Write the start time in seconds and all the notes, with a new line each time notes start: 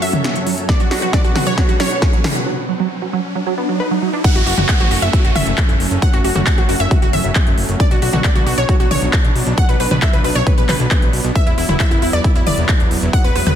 Already playing: F#2 F#3 C#4 A4 C#5, riser
0.02 F#3 E5, open hi-hat
0.13 F#3, closed hi-hat, mid tom
0.24 snare, closed hi-hat
0.36 F#3, closed hi-hat
0.47 F#3, open hi-hat
0.58 closed hi-hat
0.69 B2 F#3 D4 B4 D5 F#5, kick, snare, closed hi-hat
0.80 F#3 F#4, closed hi-hat
0.91 F#4, snare, open hi-hat
1.02 F#3 F#4, closed hi-hat
1.13 F#3 D5, kick, snare, closed hi-hat
1.24 F#4, closed hi-hat
1.35 F#3 F#4, snare, open hi-hat, mid tom
1.47 F#3 C#5, closed hi-hat
1.58 F#4, kick, snare, closed hi-hat
1.69 F#3 F#4, closed hi-hat
1.80 F#3 C#5, snare, open hi-hat
1.91 closed hi-hat
2.02 F#3, kick, snare, closed hi-hat
2.13 F#3, closed hi-hat
2.24 snare, open hi-hat, mid tom
2.35 F#3, closed hi-hat
2.47 F#3
2.69 F#3
2.80 F#3
3.02 F#3
3.13 F#3
3.35 F#3
3.47 F#3
3.58 B3
3.69 F#3
3.80 B4
3.91 F#3
4.02 F#3
4.13 D4
4.24 F#3 A3 C#4 F#5, kick, closed hi-hat, crash, downlifter
4.35 F#1 F#4, closed hi-hat
4.46 F#1 F#4, open hi-hat
4.58 F#1 F#4, closed hi-hat, mid tom
4.69 F#5, kick, clap, closed hi-hat
4.80 G#1 F#4, closed hi-hat
4.91 F#1 F#4, open hi-hat
5.02 F#1 E5, closed hi-hat
5.13 F#4, kick, closed hi-hat
5.24 F#1 F#4, closed hi-hat
5.35 F#1 E5, open hi-hat, mid tom
5.47 F#1, closed hi-hat
5.58 kick, clap, closed hi-hat
5.69 F#1, closed hi-hat
5.80 F#1, open hi-hat
5.91 F#1, closed hi-hat
6.02 F#5, kick, closed hi-hat
6.13 F#1 F#4, closed hi-hat
6.24 F#1 F#4, open hi-hat
6.35 F#1 F#4, closed hi-hat, mid tom
6.46 F#5, kick, clap, closed hi-hat
6.58 G#1 F#4, closed hi-hat
6.69 F#1 F#4, open hi-hat
6.80 F#1 E5, closed hi-hat
6.91 F#4, kick, closed hi-hat, mid tom
7.02 F#1 F#4, closed hi-hat
7.13 F#1 E5, open hi-hat, mid tom
7.24 F#1, closed hi-hat
7.35 kick, clap, closed hi-hat
7.47 F#1, closed hi-hat
7.58 F#1, open hi-hat
7.69 F#1, closed hi-hat
7.80 B3 D4 D5, kick, closed hi-hat
7.91 B1 F#4, closed hi-hat
8.02 B1 F#4, open hi-hat
8.13 B1 F#4, closed hi-hat, mid tom
8.24 D5, kick, clap, closed hi-hat
8.35 C#2 F#4, closed hi-hat
8.46 B1 F#4, open hi-hat
8.58 B1 C#5, closed hi-hat
8.69 F#4, kick, closed hi-hat
8.80 B1 F#4, closed hi-hat
8.91 B1 C#5, open hi-hat, mid tom
9.02 B1, closed hi-hat
9.13 kick, clap, closed hi-hat
9.24 B1, closed hi-hat
9.35 B1, open hi-hat
9.46 B1, closed hi-hat
9.58 F#5, kick, closed hi-hat
9.69 B1 B4, closed hi-hat
9.80 B1 B4, open hi-hat
9.91 B1 B4, mid tom
10.02 E5, kick, clap, closed hi-hat
10.13 C#2 B4, closed hi-hat
10.24 B1 B4, open hi-hat
10.35 B1 C#5, closed hi-hat
10.46 B4, kick, closed hi-hat, mid tom
10.58 B1 B4, closed hi-hat
10.69 B1 B4, clap, open hi-hat, mid tom
10.80 B1, closed hi-hat
10.91 kick, clap, closed hi-hat
11.02 B1, closed hi-hat
11.13 B1, open hi-hat
11.24 B1, closed hi-hat
11.35 F#3 E4 E5, kick, closed hi-hat
11.47 E1 E4, closed hi-hat
11.58 E1 E4, open hi-hat
11.69 E1 E4, closed hi-hat, mid tom
11.80 E5, kick, clap, closed hi-hat
11.91 F#1 E4, closed hi-hat
12.02 E1 E4, open hi-hat
12.13 E1 D5, closed hi-hat
12.24 E4, kick, closed hi-hat
12.35 E1 E4, closed hi-hat
12.47 E1 D5, open hi-hat, mid tom
12.58 E1, closed hi-hat
12.69 kick, clap, closed hi-hat
12.80 E1, closed hi-hat
12.91 E1, open hi-hat
13.02 E1, closed hi-hat
13.13 F#4 F#5, kick, closed hi-hat
13.24 E1 B4, closed hi-hat
13.35 E1 B4, open hi-hat
13.47 E1 B4, closed hi-hat, mid tom